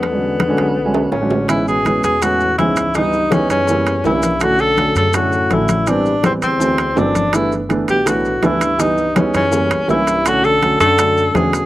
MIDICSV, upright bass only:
0, 0, Header, 1, 2, 480
1, 0, Start_track
1, 0, Key_signature, 3, "major"
1, 0, Tempo, 365186
1, 41, Time_signature, 4, 2, 24, 8
1, 15321, End_track
2, 0, Start_track
2, 0, Title_t, "Upright bass"
2, 0, Program_c, 0, 32
2, 0, Note_on_c, 0, 40, 74
2, 679, Note_off_c, 0, 40, 0
2, 754, Note_on_c, 0, 35, 76
2, 1427, Note_off_c, 0, 35, 0
2, 1474, Note_on_c, 0, 33, 78
2, 2602, Note_off_c, 0, 33, 0
2, 2672, Note_on_c, 0, 40, 85
2, 3346, Note_off_c, 0, 40, 0
2, 3393, Note_on_c, 0, 37, 81
2, 4520, Note_off_c, 0, 37, 0
2, 4588, Note_on_c, 0, 42, 86
2, 5263, Note_off_c, 0, 42, 0
2, 5308, Note_on_c, 0, 35, 81
2, 6437, Note_off_c, 0, 35, 0
2, 6508, Note_on_c, 0, 42, 90
2, 7182, Note_off_c, 0, 42, 0
2, 7234, Note_on_c, 0, 33, 86
2, 8359, Note_off_c, 0, 33, 0
2, 8437, Note_on_c, 0, 38, 78
2, 9106, Note_off_c, 0, 38, 0
2, 9150, Note_on_c, 0, 31, 84
2, 10276, Note_off_c, 0, 31, 0
2, 10354, Note_on_c, 0, 35, 86
2, 11025, Note_off_c, 0, 35, 0
2, 11075, Note_on_c, 0, 37, 78
2, 12199, Note_off_c, 0, 37, 0
2, 12279, Note_on_c, 0, 42, 94
2, 12725, Note_off_c, 0, 42, 0
2, 12760, Note_on_c, 0, 37, 66
2, 12982, Note_off_c, 0, 37, 0
2, 12991, Note_on_c, 0, 35, 79
2, 14118, Note_off_c, 0, 35, 0
2, 14197, Note_on_c, 0, 42, 92
2, 14868, Note_off_c, 0, 42, 0
2, 14909, Note_on_c, 0, 40, 86
2, 15321, Note_off_c, 0, 40, 0
2, 15321, End_track
0, 0, End_of_file